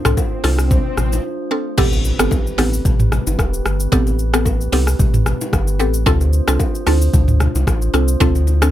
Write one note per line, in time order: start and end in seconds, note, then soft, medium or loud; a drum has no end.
0.00 1.74 A3 medium
0.00 1.74 D4 medium
0.00 1.74 F4 medium
0.00 1.74 C5 medium
0.00 swell medium
0.05 0.15 C2 loud
0.05 0.20 C4 medium
0.05 0.20 D4 medium
0.05 0.20 F4 medium
0.05 0.20 A4 medium
0.05 cross-stick loud
0.05 mid tom loud
0.05 shaker medium
0.17 kick loud
0.17 high bongo medium
0.17 shaker medium
0.44 0.79 C2 medium
0.44 0.61 C4 medium
0.44 0.61 D4 medium
0.44 0.61 F4 medium
0.44 0.61 A4 medium
0.44 cross-stick medium
0.44 open hi-hat medium
0.44 low bongo medium
0.44 shaker medium
0.58 cross-stick medium
0.58 shaker medium
0.71 kick loud
0.71 low conga medium
0.71 shaker medium
0.97 1.20 A1 medium
0.97 cross-stick medium
0.97 low conga medium
0.97 shaker medium
1.12 low bongo medium
1.12 shaker medium
1.51 1.68 C4 medium
1.51 1.68 D4 medium
1.51 1.68 F4 medium
1.51 1.68 A4 medium
1.78 2.13 A1 loud
1.78 8.71 A3 medium
1.78 1.95 B3 loud
1.78 1.95 C4 medium
1.78 6.03 C4 medium
1.78 1.95 G4 medium
1.78 6.03 G4 medium
1.78 1.95 A4 loud
1.78 6.03 B4 medium
1.78 kick loud
1.78 crash loud
1.78 impact medium
1.78 low conga medium
1.78 shaker medium
1.93 high bongo soft
1.93 shaker medium
2.05 shaker medium
2.19 2.29 G1 loud
2.19 2.34 B3 medium
2.19 2.34 C4 medium
2.19 2.34 G4 medium
2.19 2.34 A4 medium
2.19 cross-stick loud
2.19 shaker loud
2.31 kick loud
2.31 high bongo medium
2.31 shaker medium
2.47 shaker medium
2.58 2.81 A1 medium
2.58 2.75 B3 medium
2.58 2.75 C4 medium
2.58 2.75 G4 medium
2.58 2.75 A4 medium
2.58 cross-stick medium
2.58 open hi-hat medium
2.58 low bongo medium
2.58 shaker soft
2.73 shaker medium
2.85 3.20 A1 loud
2.85 kick loud
2.85 low conga medium
2.85 shaker medium
3.00 mid tom loud
3.00 shaker medium
3.12 cross-stick medium
3.12 low conga medium
3.12 shaker medium
3.27 3.37 G1 medium
3.27 low bongo medium
3.27 shaker medium
3.39 3.61 E1 medium
3.39 kick medium
3.39 cross-stick medium
3.39 high bongo medium
3.39 shaker medium
3.54 shaker medium
3.65 3.88 G1 medium
3.65 cross-stick loud
3.65 shaker medium
3.80 shaker medium
3.92 4.69 A1 loud
3.92 4.09 B3 loud
3.92 4.09 C4 medium
3.92 4.09 G4 medium
3.92 4.09 A4 loud
3.92 kick loud
3.92 low conga medium
3.92 shaker medium
4.07 high bongo medium
4.07 shaker soft
4.19 shaker medium
4.34 4.48 B3 medium
4.34 4.48 C4 medium
4.34 4.49 G4 medium
4.34 4.49 A4 medium
4.34 cross-stick loud
4.34 shaker loud
4.45 kick loud
4.45 high bongo medium
4.45 shaker medium
4.61 shaker medium
4.72 4.95 C2 medium
4.72 4.89 B3 medium
4.72 4.90 C4 medium
4.72 4.90 G4 medium
4.72 4.90 A4 medium
4.72 open hi-hat medium
4.72 low bongo medium
4.72 shaker soft
4.87 cross-stick medium
4.87 shaker medium
4.99 5.34 A1 loud
4.99 kick loud
4.99 low conga medium
4.99 shaker medium
5.14 mid tom loud
5.14 shaker medium
5.26 cross-stick medium
5.26 low conga medium
5.26 shaker medium
5.41 low bongo medium
5.41 shaker loud
5.53 5.81 G1 loud
5.53 kick medium
5.53 cross-stick medium
5.53 high bongo medium
5.53 shaker medium
5.68 shaker medium
5.79 6.08 A1 loud
5.79 5.97 B3 medium
5.79 5.97 C4 medium
5.79 5.97 G4 medium
5.79 5.97 A4 medium
5.79 shaker medium
5.94 shaker medium
6.06 6.41 D2 loud
6.06 6.23 C4 loud
6.06 6.23 D4 medium
6.06 8.71 D4 medium
6.06 6.23 F4 medium
6.06 8.71 F4 medium
6.06 6.24 A4 loud
6.06 8.71 C5 medium
6.06 kick loud
6.06 low conga medium
6.06 shaker medium
6.21 high bongo soft
6.21 shaker medium
6.33 shaker medium
6.48 6.58 C2 medium
6.48 6.63 C4 medium
6.48 6.63 D4 medium
6.48 6.63 F4 medium
6.48 6.63 A4 medium
6.48 cross-stick loud
6.48 shaker loud
6.59 kick loud
6.59 high bongo medium
6.59 shaker medium
6.75 shaker medium
6.87 7.09 D2 medium
6.87 7.04 C4 medium
6.87 7.04 D4 medium
6.87 7.04 F4 medium
6.87 7.04 A4 medium
6.87 cross-stick medium
6.87 open hi-hat medium
6.87 low bongo medium
6.87 shaker medium
7.02 shaker medium
7.14 7.48 D2 loud
7.14 kick loud
7.14 low conga medium
7.14 shaker medium
7.28 mid tom loud
7.28 shaker medium
7.40 cross-stick medium
7.40 low conga medium
7.40 shaker medium
7.55 7.65 C2 medium
7.55 low bongo medium
7.55 shaker medium
7.67 7.90 A1 loud
7.67 kick medium
7.67 cross-stick medium
7.67 high bongo medium
7.67 shaker medium
7.82 shaker medium
7.94 8.16 C2 medium
7.94 8.11 C4 medium
7.94 8.11 D4 medium
7.94 8.11 F4 medium
7.94 8.11 A4 medium
7.94 cross-stick medium
7.94 shaker medium
8.08 shaker medium
8.20 8.71 D2 loud
8.20 8.38 C4 loud
8.20 8.38 D4 medium
8.20 8.38 F4 medium
8.20 8.38 A4 loud
8.20 kick loud
8.20 low conga medium
8.20 shaker medium
8.35 high bongo soft
8.35 shaker medium
8.47 low bongo medium
8.47 shaker medium
8.62 8.71 C4 medium
8.62 8.71 D4 medium
8.62 8.71 F4 medium
8.62 8.71 A4 medium
8.62 cross-stick loud
8.62 shaker loud